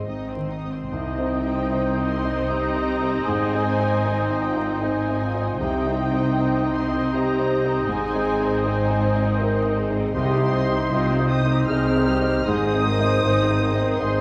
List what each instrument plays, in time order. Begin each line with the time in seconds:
Already playing: grand piano G#2 D#3 C4 D#4 C5
0.06 double bass section G#1, cello section G#2, grand piano C4, viola section D#4, violin section D#5 D#6
0.28 viola section C4, violin section C5 C6
0.36 grand piano D#3
0.50 viola section D#4, violin section D#5 D#6
0.64 grand piano C4
0.71 viola section C4, violin section C5 C6
0.90 double bass section C2, grand piano C2, cello section C3, viola section C4 D#4, clarinet D#4, violin section D#4 D#5, oboe C5, flute section D#6
1.18 grand piano C4 D#4 C5
1.31 violin section G5
1.45 grand piano C4 D#4 C5
1.70 grand piano C4 D#4 C5, french horn section D#4
1.97 grand piano C4 D#4 C5
2.10 violin section C6
2.24 grand piano C4 D#4 C5
2.49 grand piano C4 D#4 C5, french horn section G4, violin section A#5
2.75 grand piano C4 D#4 C5
3.02 grand piano C4 D#4 C5
3.25 double bass section G#1, cello section G#2, grand piano G#2, french horn section G#4, violin section G#5
3.53 grand piano C4 D#4 C5
3.64 french horn section C5
3.79 grand piano C4 D#4 C5
4.03 grand piano C4 D#4 C5, french horn section D#4
4.30 grand piano C4 D#4 C5
4.41 french horn section F4, violin section G5
4.56 grand piano C4 D#4 C5
4.81 grand piano C4 D#4 C5, french horn section D#4, violin section G#5
5.09 grand piano C4 D#4 C5
5.21 french horn section F4
5.34 grand piano C4 D#4 C5
5.58 grand piano C2, double bass section C2, cello section C3, timpani C3, viola section C4 D#4, violin section D#4 D#5 G5, clarinet D#4, french horn section G4, oboe C5, flute section D#6
5.87 grand piano C4 D#4 C5
6.00 french horn section D#4
6.12 grand piano C4 D#4 C5
6.38 grand piano C4 D#4 C5
6.63 grand piano C4 D#4 C5
6.75 violin section C6
6.88 grand piano C4 D#4 C5
7.13 grand piano C4 D#4 C5, french horn section G4, violin section A#5
7.38 grand piano C4 D#4 C5
7.64 grand piano C4 D#4 C5
7.88 double bass section G#1, grand piano G#2, cello section G#2, french horn section G#4, violin section G#5
8.14 grand piano C4 D#4 C5
8.40 grand piano C4 D#4 C5
8.65 grand piano C4 D#4 C5, french horn section C5, violin section G#5
8.89 grand piano C4 D#4 C5
9.15 grand piano C4 D#4 C5
9.39 grand piano C4 D#4 C5, french horn section A#4
9.66 grand piano C4 D#4 C5
9.76 french horn section G#4
9.90 grand piano C4 D#4 C5
10.13 double bass section C2, grand piano C2, cello section C3, timpani C3, viola section G3 D#4, clarinet D#4, french horn section G4, violin section G4 D#5 C6, oboe C5, flute section D#6
10.33 viola section C4 G4, violin section D#4 C5
10.41 grand piano C4 D#4 C5
10.51 viola section G3 D#4, violin section G4 D#5
10.68 grand piano C4 D#4 C5, violin section D#4
10.72 viola section C4 G4, violin section C5
10.90 double bass section C2, cello section C3, viola section G3 D#4, grand piano C4 D#4 C5, french horn section F4, violin section G4 D#5
11.11 viola section C4 G4, violin section D#4 C5
11.18 grand piano C4 D#4 C5
11.30 viola section G3 D#4, french horn section D#4, violin section G4 D#5 D#6
11.44 grand piano C4 D#4 C5
11.49 viola section C4 G4, violin section D#4 C5
11.67 double bass section C2, cello section C3, viola section G3 D#4, grand piano C4 D#4 C5, violin section G4 D#5 F6, french horn section G#4
11.87 viola section C4 G4, violin section D#4 C5
11.96 grand piano C4 D#4 C5
12.07 viola section G3 D#4, violin section G4 D#5, french horn section G4
12.21 grand piano C4 D#4 C5
12.26 viola section C4 G4, violin section D#4 C5
12.44 double bass section G#1, cello section G#2, grand piano G#2, viola section G#3 D#4, clarinet D#4, french horn section G#4, violin section G#4 D#5 D#6, oboe C5, flute section D#6
12.65 viola section C4 G#4, violin section D#4 C5
12.74 grand piano C4 D#4 C5
12.85 viola section G#3 D#4, violin section G#4 D#5, french horn section A#4
12.99 grand piano C4 D#4 C5
13.04 viola section C4 G#4, violin section D#4 C5
13.21 double bass section G#1, cello section G#2, viola section G#3 D#4, grand piano C4 D#4 C5, french horn section C5
13.26 violin section G#4 D#5
13.42 viola section C4 G#4, violin section D#4 C5
13.49 grand piano C4 D#4 C5
13.60 viola section G#3 D#4, french horn section A#4
13.65 violin section G#4 D#5
13.73 grand piano C4 D#4 C5
13.81 viola section C4 G#4, violin section D#4 C5
13.98 double bass section G#1, cello section G#2, viola section G#3 D#4, grand piano C4 D#4 C5, clarinet D#4, violin section G#4 C6, french horn section C5, oboe C5, flute section D#6
14.03 violin section D#5